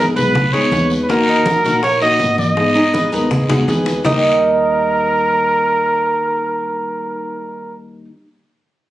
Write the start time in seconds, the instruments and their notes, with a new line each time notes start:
Already playing: upright bass G#1, steel-string acoustic guitar G#3 B3, cuban tres G#4
0.00 steel-string acoustic guitar D#4 G#4
0.16 upright bass B1, steel-string acoustic guitar G#3 B3 D#4 G#4, trumpet B4, cuban tres B4, high bongo, short guiro
0.35 high bongo, high conga, low conga, long guiro
0.53 upright bass C#2, steel-string acoustic guitar G#3 B3 D#4 G#4, cuban tres G#4, trumpet C#5, high bongo, high conga
0.71 upright bass D#2, steel-string acoustic guitar G#3 B3 D#4 G#4, cuban tres B4, high bongo, low bongo, high conga, short guiro
0.90 high bongo, high conga, short guiro
1.03 trumpet B4
1.09 steel-string acoustic guitar D#3 A#3 D#4 F#4, cuban tres A#3, trumpet A#4, high bongo, high conga, long guiro
1.27 cuban tres D#4, high conga
1.46 steel-string acoustic guitar D#3 A#3 D#4 F#4, high bongo, high conga, short guiro
1.64 upright bass A#1, steel-string acoustic guitar A#3 D#4 F#4, cuban tres F#4, high bongo, short guiro
1.83 cuban tres A#4, trumpet C#5, muted steel-string acoustic guitar stroke, high bongo, high conga, long guiro
2.01 steel-string acoustic guitar A#3 D#4 F#4, cuban tres F#4, trumpet D#5, high bongo, high conga
2.20 upright bass G#1, steel-string acoustic guitar D#3 A#3 D#4 F#4, high bongo, low bongo, high conga, short guiro
2.38 trumpet D#5, high bongo, high conga, short guiro
2.57 steel-string acoustic guitar D#3 G#3 B3 D#4 G#4, high bongo, high conga, long guiro
2.75 nylon-string guitar D#4, cuban tres G#4, high conga
2.94 steel-string acoustic guitar G#3 B3 D#4 G#4, nylon-string guitar B4, high bongo, high conga, short guiro
3.12 upright bass D#2, steel-string acoustic guitar G#3 B3 D#4 G#4, nylon-string guitar A#4, cuban tres B4, high bongo, high conga, short guiro
3.31 nylon-string guitar G#4, high bongo, high conga, low conga, long guiro
3.49 steel-string acoustic guitar G#3 B3 D#4 G#4, nylon-string guitar F#4, cuban tres G#4, high bongo, high conga, low conga
3.67 upright bass D#2, steel-string acoustic guitar G#3 B3 D#4 G#4, nylon-string guitar G#4, cuban tres B4, low bongo, high conga, short guiro
3.86 low bongo, high conga, short guiro
4.04 upright bass D#2, steel-string acoustic guitar D#3 G3 A#3 D#4 G4, cuban tres D#4 A#4 D#5, nylon-string guitar G4, trumpet A#4, low bongo, low conga, long guiro